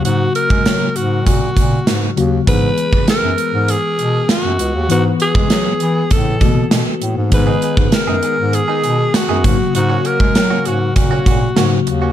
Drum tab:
HH |x-x-x-x-x-x-x-x-|x-x-x-x-x-x-x-x-|x-x-x-x-x-x-x-x-|x-x-x-x-x-x-x-x-|
SD |----o-------o---|----o-------o---|----o-------o---|----o-------o---|
BD |---o----o-o-----|o--o------------|---o----o-o-----|o--o----------o-|

HH |x-x-x-x-x-x-x-x-|
SD |----o-------o---|
BD |---o----o-o-----|